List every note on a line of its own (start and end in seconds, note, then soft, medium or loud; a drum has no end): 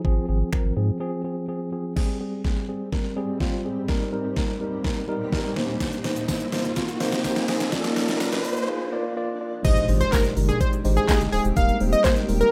0.04 0.19 G#1 loud
0.04 0.25 F3 loud
0.04 0.25 C4 loud
0.04 0.25 G#4 loud
0.04 kick loud
0.28 0.43 G#1 loud
0.28 0.49 F3 medium
0.28 0.49 C4 medium
0.28 0.49 G#4 medium
0.52 0.73 F3 medium
0.52 0.73 C4 medium
0.52 0.73 A#4 medium
0.52 finger snap loud
0.52 kick loud
0.65 0.72 G#1 loud
0.76 0.91 G#2 loud
0.76 0.97 F3 medium
0.76 0.97 C4 medium
0.76 0.97 G#4 medium
1.00 1.21 F3 loud
1.00 1.21 C4 loud
1.00 1.21 G#4 loud
1.24 1.45 F3 medium
1.24 1.45 C4 medium
1.24 1.45 G#4 medium
1.48 1.69 F3 medium
1.48 1.69 C4 medium
1.48 1.69 G#4 medium
1.72 1.93 F3 medium
1.72 1.93 C4 medium
1.72 1.93 G#4 medium
1.96 3.87 G#2 medium
1.96 2.16 G3 loud
1.96 3.87 G3 medium
1.96 2.17 C4 loud
1.96 3.87 C4 medium
1.96 2.17 G#4 loud
1.96 kick loud
1.96 snare medium
1.96 crash medium
1.96 riser medium
2.20 2.41 G3 medium
2.20 2.41 C4 medium
2.20 2.41 G#4 medium
2.44 2.65 G3 medium
2.44 2.65 C4 medium
2.44 2.65 G#4 medium
2.44 kick loud
2.44 snare medium
2.68 2.89 G3 medium
2.68 2.89 C4 medium
2.68 2.89 G#4 medium
2.92 3.13 G3 medium
2.92 3.13 C4 medium
2.92 3.13 A#4 medium
2.92 kick loud
2.92 snare medium
3.16 3.37 G3 loud
3.16 3.37 C4 loud
3.16 3.37 G#4 loud
3.40 3.61 G3 loud
3.40 3.61 C4 loud
3.40 3.61 F4 loud
3.40 kick loud
3.40 snare medium
3.64 3.85 G3 medium
3.64 3.85 C4 medium
3.64 3.85 G#4 medium
3.88 5.55 D#2 medium
3.88 5.55 A#2 medium
3.88 4.09 G3 loud
3.88 5.55 G3 medium
3.88 4.09 D#4 loud
3.88 4.09 A#4 loud
3.88 kick loud
3.88 snare medium
4.12 4.33 G3 medium
4.12 4.33 D#4 medium
4.12 4.33 A#4 medium
4.36 4.57 G3 medium
4.36 4.57 D#4 medium
4.36 4.57 A#4 medium
4.36 kick loud
4.36 snare medium
4.60 4.81 G3 medium
4.60 4.81 D#4 medium
4.60 4.81 A#4 medium
4.84 5.05 G3 medium
4.84 5.05 D#4 medium
4.84 5.05 A#4 medium
4.84 kick loud
4.84 snare medium
5.08 5.29 G3 loud
5.08 5.29 D#4 loud
5.08 5.29 A#4 loud
5.32 5.53 G3 loud
5.32 5.53 D#4 loud
5.32 5.53 A#4 loud
5.32 kick loud
5.32 snare medium
5.56 7.70 C3 medium
5.56 7.70 A#3 medium
5.56 5.97 A#3 medium
5.56 7.70 D#4 medium
5.56 5.97 D#4 medium
5.56 5.97 C5 loud
5.56 snare medium
5.80 kick loud
5.80 snare medium
5.80 closed hi-hat medium
5.80 tambourine soft
5.80 shaker medium
5.93 closed hi-hat medium
5.93 shaker medium
6.04 6.25 A#3 medium
6.04 6.25 D#4 medium
6.04 6.25 C5 medium
6.04 snare medium
6.04 open hi-hat medium
6.04 shaker medium
6.16 closed hi-hat medium
6.16 shaker medium
6.28 6.49 A#3 medium
6.28 6.49 D#4 medium
6.28 6.49 C5 medium
6.28 kick loud
6.28 snare medium
6.28 closed hi-hat medium
6.28 tambourine medium
6.28 shaker medium
6.40 closed hi-hat medium
6.40 shaker medium
6.52 6.73 A#3 medium
6.52 6.73 D#4 medium
6.52 6.73 C5 loud
6.52 snare medium
6.52 open hi-hat medium
6.52 tambourine soft
6.52 shaker medium
6.65 closed hi-hat soft
6.65 shaker medium
6.76 6.97 A#3 medium
6.76 6.97 D#4 medium
6.76 6.97 F4 medium
6.76 kick loud
6.76 snare loud
6.76 closed hi-hat medium
6.76 tambourine soft
6.76 shaker medium
6.88 closed hi-hat medium
6.88 shaker medium
7.00 7.21 A#3 loud
7.00 7.21 D#4 loud
7.00 7.21 C5 loud
7.00 snare loud
7.00 open hi-hat medium
7.00 tambourine medium
7.00 shaker medium
7.12 snare loud
7.12 closed hi-hat medium
7.12 shaker medium
7.24 7.45 A#3 loud
7.24 7.45 D#4 loud
7.24 7.45 C5 loud
7.24 kick loud
7.24 snare loud
7.24 closed hi-hat medium
7.24 tambourine medium
7.24 shaker medium
7.36 snare loud
7.36 closed hi-hat medium
7.36 shaker medium
7.48 7.69 A#3 medium
7.48 7.69 D#4 medium
7.48 7.69 C5 loud
7.48 snare loud
7.48 open hi-hat medium
7.48 tambourine soft
7.48 shaker medium
7.60 snare loud
7.60 closed hi-hat medium
7.60 shaker medium
7.72 9.63 A#2 medium
7.72 9.63 F3 medium
7.72 7.93 A#3 loud
7.72 9.63 D4 medium
7.72 7.93 F4 loud
7.72 7.93 D5 loud
7.72 kick loud
7.72 snare loud
7.72 closed hi-hat medium
7.72 tambourine soft
7.72 shaker medium
7.84 snare loud
7.84 closed hi-hat medium
7.84 shaker medium
7.96 8.17 A#3 medium
7.96 8.17 F4 medium
7.96 8.17 D5 loud
7.96 snare loud
7.96 open hi-hat medium
7.96 tambourine soft
7.96 shaker medium
8.08 snare loud
8.08 closed hi-hat medium
8.08 shaker medium
8.20 8.41 A#3 medium
8.20 8.41 F4 medium
8.20 8.41 D5 loud
8.20 snare loud
8.20 closed hi-hat medium
8.20 tambourine medium
8.20 shaker medium
8.32 snare loud
8.32 closed hi-hat medium
8.32 shaker medium
8.44 8.65 A#3 medium
8.44 8.65 F4 medium
8.44 8.65 D5 loud
8.44 open hi-hat medium
8.44 tambourine soft
8.44 shaker medium
8.57 closed hi-hat soft
8.57 shaker medium
8.68 8.89 A#3 medium
8.68 8.89 F4 medium
8.68 8.89 G#4 loud
8.92 9.13 A#3 loud
8.92 9.13 F4 loud
8.92 9.13 D5 loud
9.17 9.37 A#3 loud
9.17 9.37 F4 loud
9.17 9.37 D5 loud
9.41 9.61 A#3 medium
9.41 9.61 F4 medium
9.41 9.61 D5 loud
9.64 9.79 G#1 loud
9.64 9.85 G#3 loud
9.64 11.55 G#3 medium
9.64 11.55 C4 medium
9.64 9.85 D#4 medium
9.64 11.55 G4 medium
9.64 9.85 G4 medium
9.64 9.85 C5 loud
9.64 9.85 D#5 loud
9.64 kick loud
9.64 closed hi-hat medium
9.64 crash loud
9.64 tambourine soft
9.64 impact medium
9.64 shaker medium
9.77 closed hi-hat medium
9.77 shaker medium
9.88 10.03 G#1 loud
9.88 10.09 G#3 medium
9.88 10.09 D#4 medium
9.88 10.09 G4 medium
9.88 10.09 C5 medium
9.88 open hi-hat medium
9.88 tambourine soft
9.88 shaker medium
10.01 10.11 C5 medium
10.01 closed hi-hat medium
10.01 shaker medium
10.12 10.33 D#4 medium
10.12 10.33 G4 medium
10.12 10.23 A#4 medium
10.12 kick loud
10.12 snare medium
10.12 clap loud
10.12 closed hi-hat medium
10.12 tambourine medium
10.12 shaker medium
10.24 closed hi-hat medium
10.24 shaker medium
10.37 10.51 G1 medium
10.37 10.57 G#3 medium
10.37 10.57 D#4 medium
10.37 10.57 G4 medium
10.37 10.57 A#4 medium
10.37 open hi-hat medium
10.37 tambourine soft
10.37 shaker medium
10.49 10.59 G#4 medium
10.49 closed hi-hat soft
10.49 shaker medium
10.60 10.81 G#3 medium
10.60 10.81 D#4 medium
10.60 10.81 G4 medium
10.60 10.71 C5 medium
10.60 10.81 D5 medium
10.60 kick loud
10.60 closed hi-hat medium
10.60 shaker medium
10.73 closed hi-hat medium
10.73 shaker medium
10.85 10.99 G#1 loud
10.85 11.05 G#3 loud
10.85 11.05 D#4 medium
10.85 11.05 G4 medium
10.85 11.05 C5 loud
10.85 open hi-hat medium
10.85 tambourine soft
10.85 shaker medium
10.97 11.07 G#4 medium
10.97 closed hi-hat medium
10.97 shaker medium
11.08 11.29 G#3 loud
11.08 11.29 D#4 medium
11.08 11.29 G4 loud
11.08 11.19 G#4 medium
11.08 11.29 D#5 loud
11.08 kick loud
11.08 snare loud
11.08 clap loud
11.08 closed hi-hat medium
11.08 tambourine medium
11.08 shaker medium
11.21 11.28 G1 loud
11.21 closed hi-hat medium
11.21 shaker medium
11.32 11.40 C#1 loud
11.32 11.53 G#3 medium
11.32 11.53 D#4 medium
11.32 11.53 G4 medium
11.32 11.43 G#4 medium
11.32 11.53 C5 medium
11.32 open hi-hat medium
11.32 tambourine soft
11.32 shaker medium
11.45 11.52 D1 medium
11.45 closed hi-hat medium
11.45 shaker medium
11.56 11.71 D#1 loud
11.56 12.52 D#3 medium
11.56 11.77 G3 loud
11.56 11.77 A#3 medium
11.56 12.52 A#3 medium
11.56 11.77 D#4 medium
11.56 12.52 G4 medium
11.56 11.77 A#4 loud
11.56 11.77 F5 loud
11.56 kick loud
11.56 closed hi-hat medium
11.56 tambourine medium
11.56 shaker medium
11.69 closed hi-hat medium
11.69 shaker medium
11.80 11.95 D#1 loud
11.80 12.01 G3 medium
11.80 12.01 A#3 medium
11.80 12.01 D#4 medium
11.80 12.01 C5 medium
11.80 open hi-hat medium
11.80 shaker medium
11.93 12.03 D#5 medium
11.93 closed hi-hat medium
11.93 shaker medium
12.04 12.25 G3 medium
12.04 12.25 A#3 medium
12.04 12.25 D#4 medium
12.04 12.25 A#4 medium
12.04 12.15 C5 medium
12.04 kick loud
12.04 snare medium
12.04 clap loud
12.04 closed hi-hat medium
12.04 tambourine medium
12.04 shaker medium
12.16 closed hi-hat medium
12.16 shaker medium
12.28 12.43 D#1 medium
12.28 12.49 G3 medium
12.28 12.49 A#3 medium
12.28 12.49 D#4 medium
12.28 12.49 A#4 medium
12.28 open hi-hat medium
12.28 tambourine soft
12.28 shaker medium
12.41 12.51 A#4 medium
12.41 closed hi-hat soft
12.41 shaker medium